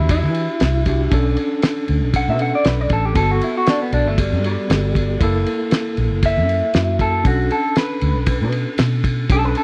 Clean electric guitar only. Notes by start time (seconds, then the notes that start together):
0.11 E4
2.16 F#5
2.30 E5
2.42 F#5
2.55 D5
2.68 B4
2.81 D5
2.93 A4
3.05 G4
3.16 A4
3.31 F#4
3.44 E4
3.58 F#4
3.69 D4
3.82 B3
3.94 D4
4.07 A3
4.20 G3
4.46 G3
6.26 E5
7.01 A4
7.27 F#4
7.52 A4
7.78 B4
9.32 A4
9.45 B4
9.57 A4